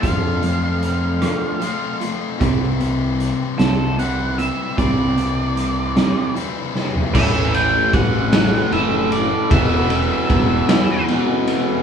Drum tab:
CC |------------|------------|------------|x-----------|
RD |------------|------------|------------|--x-x-x-x-x-|
HH |x-x-x-x-x-x-|x-x-x-x-x-x-|x-x-x-x-x---|------------|
SD |------r-----|------o-----|------o---o-|------o-----|
FT |------------|------------|-----------o|------------|
BD |o-----------|o-----------|o-----------|o---o-------|

CC |------------|
RD |x-x-x-x-x-x-|
HH |------------|
SD |------o-----|
FT |------------|
BD |o---o-------|